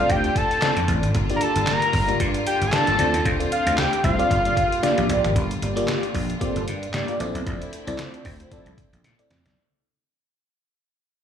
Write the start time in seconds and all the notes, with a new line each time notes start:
Already playing: D3 A3 C4 F4 F5
0.00 D4 F4 A4 D5
0.09 D2 G5, kick, closed hi-hat
0.24 closed hi-hat
0.36 A5, kick, closed hi-hat
0.51 closed hi-hat
0.62 C4 D4 F4 A4 D5, snare, clap, closed hi-hat
0.76 F2, closed hi-hat
0.88 A1, kick, closed hi-hat
1.03 G#1, closed hi-hat
1.14 G1 G3 A#3 F4, kick, closed hi-hat
1.29 A#3 D4 F4 G4 D5, closed hi-hat
1.36 A#5
1.41 A5, closed hi-hat
1.56 G1, closed hi-hat
1.67 A#5, snare, clap, closed hi-hat
1.82 closed hi-hat
1.93 G1, kick, open hi-hat
2.08 A#3 D4 F4 G4 D5, closed hi-hat
2.20 G2, kick, closed hi-hat
2.34 closed hi-hat
2.47 G5, closed hi-hat
2.61 G1, closed hi-hat
2.67 G#5
2.72 A#3 D4 F4 G4 D5 A5, snare, clap, closed hi-hat
2.87 G1, closed hi-hat
2.98 D2 A3 C4 D4 F4 A4 D5, closed hi-hat
3.14 D#2, closed hi-hat
3.25 D2, kick, closed hi-hat
3.39 C4 D4 F4 A4 D5, closed hi-hat
3.52 F5, closed hi-hat
3.66 D2, closed hi-hat
3.78 G5, snare, clap, closed hi-hat
3.93 closed hi-hat
4.04 C2 A3 F4 C5 F5, kick, closed hi-hat
4.18 C4 D4 F4 A4 D5, closed hi-hat
4.31 G1 G3 A#3 F4, kick, closed hi-hat
4.45 A#3 G4 D5, closed hi-hat
4.57 kick, closed hi-hat
4.72 closed hi-hat
4.83 A#3 D4 F4 G4 D5, snare, closed hi-hat
4.98 A#1, closed hi-hat, high tom
5.09 A#1 A#3 G4 D5, closed hi-hat, mid tom
5.24 G#1, closed hi-hat, floor tom
5.36 G1 D3 G3 A#3 F4, kick, closed hi-hat
5.51 closed hi-hat
5.62 G1 A#3 G4 D5, closed hi-hat
5.76 G3 A#3 F4 G4 A#4 D5, closed hi-hat
5.88 A#3 G4 D5, snare, clap, closed hi-hat
6.03 closed hi-hat
6.15 A#1, kick, open hi-hat
6.30 closed hi-hat
6.40 A#3 C4 F4 G4 A4 C5 D5, kick, closed hi-hat
6.56 G1, closed hi-hat
6.67 G2, closed hi-hat
6.83 closed hi-hat
6.94 G2 A#3 G4 D5, snare, clap, closed hi-hat
7.08 A#3 F4 G4 D5, closed hi-hat
7.20 A#1 A3 C4 E4 A4 D5, closed hi-hat
7.35 B1, closed hi-hat
7.46 A#1, kick, closed hi-hat
7.62 closed hi-hat
7.73 closed hi-hat
7.87 C2 F3 C4 E4 A4 A#4 D5, closed hi-hat
7.99 A3 F4 C5, snare, clap, closed hi-hat
8.14 A3 F4 D5, closed hi-hat
8.25 D2, kick, open hi-hat
8.40 A3 F4 C5, closed hi-hat
8.51 F3 C4 E4 A4 D5, kick, closed hi-hat
8.66 C2, closed hi-hat
8.78 kick, closed hi-hat
8.93 A#1, closed hi-hat
9.04 A#2, snare, closed hi-hat
9.19 C4 E4 A4 D5, closed hi-hat
9.30 F2, snare, closed hi-hat
9.45 B1, snare, closed hi-hat